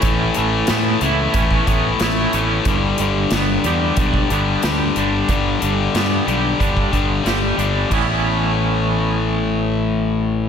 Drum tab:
CC |----------------|----------------|----------------|x---------------|
HH |x-x-x-x-x-x-x-x-|x-x-x-x-x-x-x-x-|x-x-x-x-x-x-x-x-|----------------|
SD |----o-------o---|----o-------o---|----o-------o---|----------------|
BD |o-------ooo-----|o-------oo------|o-------ooo-----|o---------------|